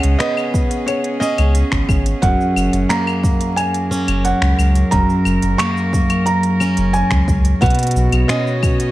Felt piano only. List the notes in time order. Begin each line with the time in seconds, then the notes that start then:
Already playing: F#5
0.19 D#5
0.86 C#5
1.20 D#5
2.22 F#5
2.89 A#5
3.56 G#5
4.24 F#5
4.91 A#5
5.58 C#6
6.26 A#5
6.93 G#5
7.61 F#5
8.28 D#5